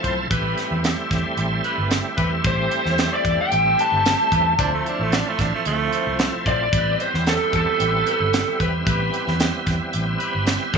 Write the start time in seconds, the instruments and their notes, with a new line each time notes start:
Already playing: tonewheel organ F3 A3 C4 E4 A5
0.03 fingered electric bass B1, horn section E4 F4 C5, kick, closed hi-hat
0.30 fingered electric bass A1, tonewheel organ G3 A3 C4 E4, horn section G4 B4, kick, closed hi-hat
0.57 snare, closed hi-hat
0.71 fingered electric bass E2
0.84 snare, closed hi-hat
1.11 fingered electric bass E2, kick, snare, closed hi-hat
1.37 fingered electric bass A1, closed hi-hat
1.64 horn section C4 G4 B4, closed hi-hat
1.78 fingered electric bass G1
1.91 snare, closed hi-hat
2.17 fingered electric bass E2, horn section C4 G4 B4, kick, closed hi-hat
2.44 fingered electric bass A1, horn section G4 C5, lead electric guitar C5, kick, closed hi-hat
2.71 closed hi-hat
2.85 fingered electric bass E2, snare
2.98 lead electric guitar C5, snare, closed hi-hat
3.14 lead electric guitar D5
3.25 fingered electric bass E2, kick, closed hi-hat
3.41 lead electric guitar G5
3.52 fingered electric bass A1, closed hi-hat
3.79 horn section C4 G4 B4, lead electric guitar A5, closed hi-hat
3.92 fingered electric bass G1
4.06 snare, closed hi-hat
4.32 fingered electric bass E2, horn section C4 G4 B4, kick, closed hi-hat
4.58 fingered electric bass D2, tonewheel organ F3 A3 C4 E4, tenor saxophone D4, horn section E4 C5, kick, closed hi-hat
4.74 tenor saxophone A3
4.86 tenor saxophone D4, closed hi-hat
4.99 fingered electric bass A1, tenor saxophone A3
5.12 tenor saxophone D4, snare, closed hi-hat
5.29 tenor saxophone A3
5.39 fingered electric bass A1, tenor saxophone D4, kick, snare, closed hi-hat
5.55 tenor saxophone A3
5.65 fingered electric bass D2, tenor saxophone A3, closed hi-hat
5.91 horn section E4 F4 C5, closed hi-hat
6.07 fingered electric bass C2
6.19 snare, closed hi-hat
6.46 fingered electric bass A#1, horn section E4 F4 C5, lead electric guitar D5, kick, closed hi-hat
6.72 fingered electric bass A1, tonewheel organ G3 B3 C4 E4, horn section G4 B4, kick, closed hi-hat
7.00 lead electric guitar C5, closed hi-hat
7.14 fingered electric bass E2, snare
7.26 lead electric guitar A4, snare, closed hi-hat
7.53 fingered electric bass E2, lead electric guitar A4, kick, closed hi-hat
7.80 fingered electric bass A1, closed hi-hat
8.07 horn section C4 G4 B4, closed hi-hat
8.20 fingered electric bass G1
8.33 snare, closed hi-hat
8.60 fingered electric bass E2, horn section C4 G4 B4, kick, closed hi-hat
8.87 fingered electric bass A1, horn section G4 B4, kick, closed hi-hat
9.14 closed hi-hat
9.27 fingered electric bass E2, snare
9.40 snare, closed hi-hat
9.67 fingered electric bass E2, kick, snare, closed hi-hat
9.93 fingered electric bass A1, closed hi-hat
10.19 horn section C4 G4 B4, closed hi-hat
10.35 fingered electric bass G1
10.47 snare, closed hi-hat
10.73 fingered electric bass E2, horn section C4 G4 B4, kick, closed hi-hat